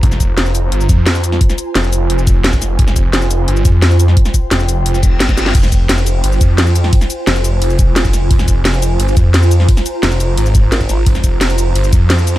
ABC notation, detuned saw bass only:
X:1
M:4/4
L:1/8
Q:1/4=174
K:Fm
V:1 name="Detuned saw bass" clef=bass
F,,,2 F,,,2 G,,, F,,3 | z2 F,,,2 F,,,4 | F,,,2 F,,,2 G,,, F,,3 | z2 F,,,2 F,,,2 G,,,2 |
F,,,2 F,,,2 G,,, F,,3 | z2 F,,,2 F,,,4 | F,,,2 F,,,2 G,,, F,,3 | z2 F,,,2 A,,,2 z2 |
F,,,2 F,,,2 G,,, F,,3 |]